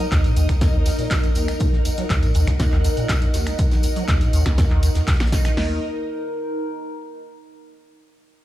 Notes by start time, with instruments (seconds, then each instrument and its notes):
Already playing: string machine D#4 A#4 D#5, ambient pad D#4 A#4 D#5
0.12 acid bass D#2, kick, snare, clap, closed hi-hat, tambourine
0.24 acid bass A#2, open hi-hat, tambourine
0.36 acid bass D#2, closed hi-hat, open hi-hat, tambourine
0.49 acid bass C#2, finger snap, kick, closed hi-hat, tambourine
0.61 acid bass F2, kick, snare, closed hi-hat, tambourine
0.74 acid bass D#2
0.86 acid bass D#2, snare, open hi-hat, tambourine
0.98 acid bass A#2, snare, closed hi-hat, tambourine
1.11 acid bass D#2, kick, snare, clap, closed hi-hat, tambourine
1.23 acid bass F#2, closed hi-hat, tambourine
1.35 acid bass D#2, closed hi-hat, open hi-hat, tambourine
1.48 acid bass C#2, finger snap, closed hi-hat, tambourine
1.60 acid bass D#2, string machine F#5, kick, closed hi-hat, tambourine
1.73 acid bass D#3, snare
1.85 acid bass D#2, closed hi-hat, open hi-hat, tambourine
1.98 acid bass F#3, snare, closed hi-hat
2.10 acid bass D#2, kick, snare, clap, closed hi-hat, tambourine
2.23 acid bass A#2, open hi-hat, tambourine
2.34 acid bass D#2, closed hi-hat, open hi-hat, tambourine
2.47 acid bass C#2, finger snap, kick, snare, closed hi-hat, tambourine
2.59 acid bass F2, kick, snare, closed hi-hat, tambourine
2.72 acid bass D#2, snare, clap
2.84 acid bass D#2, snare, closed hi-hat, open hi-hat, tambourine
2.97 acid bass A#2, closed hi-hat, tambourine
3.09 acid bass D#2, kick, snare, clap, closed hi-hat, tambourine
3.22 acid bass F#2, closed hi-hat, tambourine
3.34 acid bass D#2, snare, closed hi-hat, open hi-hat, tambourine
3.47 acid bass C#2, finger snap, closed hi-hat, tambourine
3.58 acid bass D#2, kick, closed hi-hat, tambourine
3.71 acid bass D#3, snare, closed hi-hat, tambourine
3.83 acid bass D#2, closed hi-hat, open hi-hat, tambourine
3.96 acid bass F#3, closed hi-hat, tambourine
4.08 acid bass D#2, kick, snare, clap, closed hi-hat, tambourine
4.21 acid bass A#2, closed hi-hat, open hi-hat, tambourine
4.33 acid bass D#2, closed hi-hat, open hi-hat, tambourine
4.46 acid bass C#2, finger snap, kick, snare, closed hi-hat
4.57 acid bass F2, kick, snare, closed hi-hat, tambourine
4.70 acid bass D#2, clap
4.83 acid bass D#2, closed hi-hat, open hi-hat, tambourine
4.95 acid bass D#2, snare, closed hi-hat, tambourine
5.07 acid bass D#2, kick, snare, clap, closed hi-hat, tambourine
5.13 snare, closed hi-hat
5.20 acid bass F#3, finger snap, snare, closed hi-hat, tambourine
5.26 snare, closed hi-hat
5.32 acid bass D#3, kick, snare, closed hi-hat, open hi-hat, tambourine
5.44 acid bass D#3, finger snap, snare, closed hi-hat, tambourine
5.57 acid bass D#2, ambient pad D#4, string machine D#4 A#4 D#5, snare, open hi-hat
5.65 ambient pad A#4
5.72 ambient pad A#5